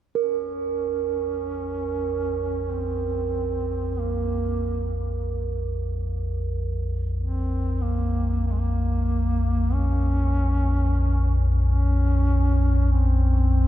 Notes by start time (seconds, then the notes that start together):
0.15 A#1 F2 C#4 A#4
2.70 C4
4.00 A#3
7.20 C4
7.82 A#3
8.46 A#3
8.51 G#3
8.60 A#3
9.74 C#4
11.64 C#4
12.93 C4